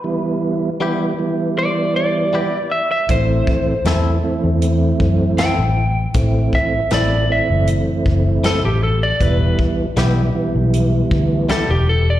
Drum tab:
HH |--------|x-x-x-x-|x-x-x-x-|x-x-x-x-|
SD |--------|--o---o-|--o---o-|--o---o-|
BD |--------|oo---o--|oo---o--|oo---o--|